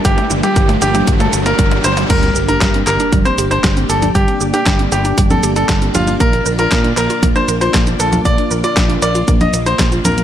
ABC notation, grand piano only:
X:1
M:4/4
L:1/16
Q:1/4=117
K:Gm
V:1 name="Grand piano"
G2 z G2 z G2 z A z B2 z c z | B2 z B2 z B2 z c z c2 z A z | G2 z G2 z G2 z A z A2 z F z | B2 z B2 z B2 z c z c2 z A z |
d2 z d2 z d2 z e z c2 z B z |]